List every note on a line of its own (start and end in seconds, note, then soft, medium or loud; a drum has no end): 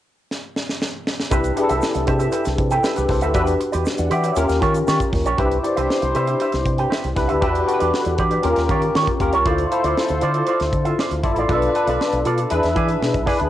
0.31 snare medium
0.56 snare medium
0.69 snare medium
0.82 snare medium
1.07 snare medium
1.20 snare medium
1.31 1.50 C2 loud
1.31 1.49 D4 medium
1.31 1.49 E4 medium
1.31 1.55 G4 medium
1.31 1.49 G4 medium
1.31 1.50 B4 medium
1.31 1.55 B4 medium
1.31 1.56 E5 medium
1.31 kick loud
1.31 closed hi-hat medium
1.31 shaker medium
1.44 closed hi-hat soft
1.44 shaker soft
1.56 2.29 D4 medium
1.56 2.29 E4 medium
1.56 2.29 G4 medium
1.56 1.64 G#4 medium
1.56 muted clean electric guitar stroke soft
1.56 closed hi-hat medium
1.63 2.32 A4 medium
1.69 1.80 C2 medium
1.69 1.81 G4 soft
1.69 1.81 B4 medium
1.69 1.81 E5 medium
1.69 closed hi-hat medium
1.69 shaker soft
1.82 muted clean electric guitar stroke soft
1.82 snare medium
1.82 shaker medium
1.95 2.05 C2 medium
1.95 muted clean electric guitar stroke soft
1.95 closed hi-hat medium
1.95 shaker soft
2.07 2.27 C3 loud
2.07 2.19 G4 medium
2.07 2.19 B4 medium
2.07 2.18 E5 medium
2.07 kick medium
2.07 closed hi-hat medium
2.19 2.31 G4 medium
2.19 2.31 B4 medium
2.19 2.32 E5 medium
2.19 closed hi-hat soft
2.19 shaker medium
2.32 2.49 G4 medium
2.32 2.45 B4 medium
2.32 2.44 E5 medium
2.32 closed hi-hat medium
2.32 shaker medium
2.45 2.56 C2 loud
2.45 muted clean electric guitar stroke soft
2.45 snare soft
2.45 closed hi-hat soft
2.45 shaker soft
2.58 2.78 C3 medium
2.58 muted clean electric guitar stroke soft
2.58 kick medium
2.58 closed hi-hat medium
2.71 2.82 G4 medium
2.71 2.96 A4 medium
2.71 2.83 B4 medium
2.71 2.84 G5 medium
2.71 closed hi-hat soft
2.71 shaker soft
2.83 3.00 G4 medium
2.83 2.96 B4 medium
2.83 2.95 E5 medium
2.83 snare loud
2.83 shaker medium
2.96 3.07 C2 medium
2.96 3.09 G4 medium
2.96 3.09 B4 medium
2.96 muted clean electric guitar stroke medium
2.96 closed hi-hat medium
2.96 shaker soft
3.09 3.23 C2 medium
3.09 3.22 A4 medium
3.09 3.21 C5 medium
3.09 muted clean electric guitar stroke soft
3.09 kick medium
3.09 snare soft
3.09 open hi-hat medium
3.21 3.32 D2 medium
3.21 3.33 G4 medium
3.21 3.34 B4 medium
3.21 3.47 C5 soft
3.21 3.35 E5 medium
3.21 3.47 E5 medium
3.21 closed hi-hat medium
3.21 shaker soft
3.34 3.54 E2 medium
3.34 3.53 D4 medium
3.34 3.53 F#4 medium
3.34 3.58 G4 medium
3.34 3.53 G4 medium
3.34 3.53 B4 medium
3.34 3.59 B4 medium
3.34 3.59 E5 medium
3.34 kick loud
3.34 closed hi-hat medium
3.34 shaker medium
3.47 closed hi-hat soft
3.47 shaker soft
3.60 muted clean electric guitar stroke soft
3.60 closed hi-hat medium
3.72 3.83 E2 medium
3.72 3.84 G4 medium
3.72 3.85 B4 medium
3.72 3.85 D5 medium
3.72 closed hi-hat medium
3.72 shaker soft
3.85 muted clean electric guitar stroke soft
3.85 snare medium
3.85 shaker medium
3.98 4.08 E2 loud
3.98 4.11 D5 medium
3.98 4.11 F#5 medium
3.98 muted clean electric guitar stroke soft
3.98 closed hi-hat medium
3.98 shaker soft
4.10 4.30 E3 medium
4.10 4.23 G4 medium
4.10 4.22 B4 medium
4.10 4.22 D5 medium
4.10 4.23 E5 medium
4.10 4.24 G5 medium
4.10 closed hi-hat medium
4.23 4.36 G4 medium
4.23 4.36 B4 medium
4.23 4.49 C#5 soft
4.23 4.36 D5 medium
4.23 4.49 E5 medium
4.23 closed hi-hat medium
4.23 shaker soft
4.36 4.46 D#2 loud
4.36 5.18 C#4 medium
4.36 5.18 F4 medium
4.36 5.19 G4 medium
4.36 5.19 A#4 medium
4.36 muted clean electric guitar stroke soft
4.36 closed hi-hat medium
4.36 shaker medium
4.49 4.59 D#2 medium
4.49 muted clean electric guitar stroke soft
4.49 snare soft
4.49 closed hi-hat soft
4.49 shaker soft
4.61 4.81 D#3 loud
4.61 4.78 F4 medium
4.61 4.75 G4 medium
4.61 4.74 C#5 medium
4.61 kick medium
4.61 closed hi-hat medium
4.74 muted clean electric guitar stroke soft
4.74 closed hi-hat soft
4.74 shaker soft
4.87 4.97 D#3 loud
4.87 5.04 F4 medium
4.87 5.00 G4 medium
4.87 4.99 C#5 medium
4.87 snare loud
4.87 shaker medium
5.00 muted clean electric guitar stroke soft
5.00 kick medium
5.00 closed hi-hat medium
5.00 shaker soft
5.13 5.23 D#2 medium
5.13 muted clean electric guitar stroke soft
5.13 kick medium
5.13 snare soft
5.13 open hi-hat medium
5.26 5.35 A#1 medium
5.26 5.38 F4 soft
5.26 5.37 G4 medium
5.26 5.39 C#5 medium
5.26 closed hi-hat medium
5.26 shaker soft
5.37 5.57 C2 medium
5.37 5.56 D4 medium
5.37 5.56 E4 medium
5.37 7.13 E4 medium
5.37 5.56 G4 medium
5.37 7.13 G4 medium
5.37 5.62 G4 medium
5.37 5.57 B4 medium
5.37 5.62 B4 medium
5.37 7.13 C5 medium
5.37 5.63 E5 medium
5.37 kick medium
5.37 closed hi-hat medium
5.51 closed hi-hat soft
5.63 6.36 D4 medium
5.63 6.36 E4 medium
5.63 6.36 G4 medium
5.63 6.36 D5 medium
5.63 muted clean electric guitar stroke soft
5.63 closed hi-hat medium
5.76 5.87 C2 medium
5.76 5.87 G4 soft
5.76 5.88 B4 medium
5.76 5.88 E5 medium
5.76 closed hi-hat medium
5.89 muted clean electric guitar stroke soft
5.89 snare medium
6.02 6.12 C2 medium
6.02 muted clean electric guitar stroke soft
6.02 closed hi-hat medium
6.15 6.34 C3 medium
6.15 6.28 G4 medium
6.15 6.28 B4 medium
6.15 6.27 E5 medium
6.15 closed hi-hat medium
6.27 6.39 G4 soft
6.27 6.40 B4 medium
6.27 6.41 E5 medium
6.27 closed hi-hat soft
6.40 6.57 G4 medium
6.40 6.53 B4 medium
6.40 6.52 E5 medium
6.40 closed hi-hat medium
6.52 6.63 C2 medium
6.52 muted clean electric guitar stroke soft
6.52 snare soft
6.52 closed hi-hat soft
6.66 6.85 C3 medium
6.66 muted clean electric guitar stroke soft
6.66 kick medium
6.66 closed hi-hat medium
6.78 6.89 G4 soft
6.78 6.90 B4 medium
6.78 6.91 G5 medium
6.78 closed hi-hat soft
6.90 7.07 G4 medium
6.90 7.03 B4 medium
6.90 7.03 E5 medium
6.90 snare loud
7.04 7.14 C2 medium
7.04 muted clean electric guitar stroke soft
7.04 closed hi-hat soft
7.15 7.26 C2 medium
7.15 7.34 D4 medium
7.15 7.34 E4 medium
7.15 7.35 G4 medium
7.15 7.35 B4 medium
7.15 muted clean electric guitar stroke soft
7.15 kick medium
7.15 snare soft
7.15 closed hi-hat medium
7.28 7.42 D2 medium
7.28 7.40 G4 soft
7.28 7.41 B4 soft
7.28 7.42 E5 medium
7.28 closed hi-hat soft
7.41 7.61 E2 loud
7.41 7.60 D4 medium
7.41 8.17 E4 medium
7.41 7.60 F#4 medium
7.41 7.65 G4 medium
7.41 8.17 G4 medium
7.41 7.60 G4 medium
7.41 8.17 B4 medium
7.41 7.66 B4 medium
7.41 7.60 B4 medium
7.41 7.66 E5 medium
7.41 kick medium
7.41 closed hi-hat medium
7.55 closed hi-hat soft
7.66 8.39 D4 medium
7.66 8.39 F#4 medium
7.66 8.39 G4 medium
7.66 7.74 A4 medium
7.66 muted clean electric guitar stroke soft
7.66 closed hi-hat medium
7.73 8.42 B4 medium
7.80 7.91 E2 medium
7.80 7.91 G4 medium
7.80 7.92 B4 medium
7.80 7.92 D5 medium
7.80 closed hi-hat medium
7.92 muted clean electric guitar stroke soft
7.92 snare medium
8.05 8.16 E2 medium
8.05 muted clean electric guitar stroke soft
8.05 closed hi-hat medium
8.18 8.38 E3 medium
8.18 8.31 G4 medium
8.18 8.30 B4 medium
8.18 8.30 D5 medium
8.18 kick medium
8.18 closed hi-hat medium
8.31 8.44 G4 soft
8.31 8.44 B4 medium
8.31 8.44 D5 medium
8.31 closed hi-hat soft
8.42 8.54 D#2 loud
8.42 9.04 C#4 medium
8.42 9.05 F4 medium
8.42 9.19 F4 medium
8.42 9.05 G4 medium
8.42 9.19 G4 medium
8.42 9.05 A#4 medium
8.42 9.19 A#4 medium
8.42 muted clean electric guitar stroke soft
8.42 closed hi-hat medium
8.56 8.66 D#2 medium
8.56 muted clean electric guitar stroke soft
8.56 snare soft
8.56 closed hi-hat soft
8.69 8.88 D#3 medium
8.69 8.86 F4 medium
8.69 8.82 G4 medium
8.69 8.81 C#5 medium
8.69 kick medium
8.69 closed hi-hat medium
8.82 muted clean electric guitar stroke soft
8.82 closed hi-hat soft
8.95 9.05 D#3 medium
8.95 9.11 F4 medium
8.95 9.07 G4 medium
8.95 9.07 C#5 medium
8.95 snare loud
9.07 muted clean electric guitar stroke soft
9.07 kick medium
9.07 closed hi-hat soft
9.20 9.30 D#2 medium
9.20 9.38 C#4 medium
9.20 9.38 F4 medium
9.20 9.39 G4 medium
9.20 9.39 A#4 medium
9.20 muted clean electric guitar stroke soft
9.20 kick medium
9.20 closed hi-hat medium
9.33 9.43 C2 medium
9.33 9.44 F4 soft
9.33 9.46 G4 medium
9.33 9.46 C#5 medium
9.33 closed hi-hat medium
9.45 9.65 D2 medium
9.45 9.64 E4 medium
9.45 11.20 F4 medium
9.45 9.69 F4 medium
9.45 9.64 F4 medium
9.45 11.20 A4 medium
9.45 9.64 A4 medium
9.45 11.20 C5 loud
9.45 9.69 C5 medium
9.45 9.64 C5 medium
9.45 9.70 D5 medium
9.45 kick medium
9.45 closed hi-hat medium
9.58 closed hi-hat soft
9.71 10.43 E4 medium
9.71 10.43 F4 medium
9.71 10.43 A4 medium
9.71 10.44 C5 medium
9.71 muted clean electric guitar stroke soft
9.71 closed hi-hat medium
9.84 9.93 D2 medium
9.84 9.95 F4 soft
9.84 9.96 C5 medium
9.84 9.97 D5 medium
9.84 closed hi-hat medium
9.96 muted clean electric guitar stroke soft
9.96 snare medium
10.09 10.19 D2 medium
10.09 muted clean electric guitar stroke soft
10.09 closed hi-hat soft
10.21 10.41 D3 medium
10.21 10.35 F4 medium
10.21 10.34 C5 medium
10.21 10.33 D5 medium
10.21 closed hi-hat medium
10.34 10.46 F4 soft
10.34 10.46 C5 soft
10.34 10.47 D5 medium
10.34 closed hi-hat soft
10.47 10.64 F4 medium
10.47 10.60 C5 medium
10.47 10.60 D5 medium
10.47 closed hi-hat medium
10.60 10.70 D2 medium
10.60 muted clean electric guitar stroke soft
10.60 snare soft
10.60 closed hi-hat soft
10.73 10.92 D3 medium
10.73 muted clean electric guitar stroke soft
10.73 kick medium
10.73 closed hi-hat medium
10.85 10.98 F4 medium
10.85 10.98 C5 medium
10.85 10.98 E5 medium
10.85 closed hi-hat soft
10.99 11.15 F4 medium
10.99 11.12 C5 medium
10.99 11.11 D5 medium
10.99 snare loud
11.11 11.21 D2 medium
11.11 muted clean electric guitar stroke soft
11.11 closed hi-hat medium
11.23 11.33 G1 medium
11.23 11.42 E4 medium
11.23 11.42 F4 medium
11.23 11.42 A4 medium
11.23 11.42 D5 medium
11.23 muted clean electric guitar stroke soft
11.23 kick medium
11.23 closed hi-hat medium
11.36 11.46 A1 medium
11.36 11.49 F4 soft
11.36 11.50 C5 medium
11.36 11.50 D5 medium
11.36 closed hi-hat soft
11.48 11.68 B1 loud
11.48 11.67 D4 medium
11.48 11.67 F4 medium
11.48 11.73 F4 medium
11.48 11.67 A4 medium
11.48 12.24 A4 medium
11.48 11.74 A4 medium
11.48 11.67 B4 medium
11.48 12.24 B4 medium
11.48 12.24 D5 medium
11.48 11.74 E5 medium
11.48 kick loud
11.48 closed hi-hat medium
11.62 closed hi-hat soft
11.74 12.46 D4 medium
11.74 12.47 F4 medium
11.74 12.47 A4 medium
11.74 12.47 B4 medium
11.74 muted clean electric guitar stroke soft
11.74 closed hi-hat medium
11.87 11.97 B1 medium
11.87 11.99 F4 soft
11.87 12.00 A4 soft
11.87 12.00 D5 medium
11.87 closed hi-hat medium
12.01 muted clean electric guitar stroke soft
12.01 snare medium
12.12 12.22 B1 medium
12.12 muted clean electric guitar stroke soft
12.12 closed hi-hat medium
12.25 12.45 B2 medium
12.25 12.39 F4 medium
12.25 12.38 A4 medium
12.25 12.38 D5 medium
12.25 closed hi-hat medium
12.38 12.51 F4 soft
12.38 12.51 A4 medium
12.38 12.51 D5 medium
12.38 closed hi-hat soft
12.50 12.61 E2 medium
12.50 13.12 D4 medium
12.50 13.12 E4 medium
12.50 13.26 G#4 medium
12.50 13.12 G#4 medium
12.50 13.25 B4 medium
12.50 13.12 B4 medium
12.50 13.26 E5 medium
12.50 muted clean electric guitar stroke soft
12.50 closed hi-hat medium
12.63 12.73 E2 medium
12.63 muted clean electric guitar stroke soft
12.63 snare soft
12.63 closed hi-hat soft
12.75 12.95 E3 medium
12.75 12.92 E4 medium
12.75 12.88 G#4 medium
12.75 12.87 D5 medium
12.75 kick medium
12.75 closed hi-hat medium
12.88 muted clean electric guitar stroke soft
12.88 closed hi-hat soft
13.00 13.11 B2 medium
13.00 muted clean electric guitar stroke soft
13.00 snare loud
13.13 13.24 B1 medium
13.13 muted clean electric guitar stroke soft
13.13 kick medium
13.13 closed hi-hat medium
13.26 13.45 D4 medium
13.26 13.43 E4 medium
13.26 13.45 E4 medium
13.26 13.38 G#4 medium
13.26 13.45 G#4 medium
13.26 13.46 B4 medium
13.26 13.37 D5 medium
13.26 kick medium
13.26 snare soft
13.26 open hi-hat medium
13.38 13.49 D2 medium
13.38 muted clean electric guitar stroke soft
13.38 closed hi-hat medium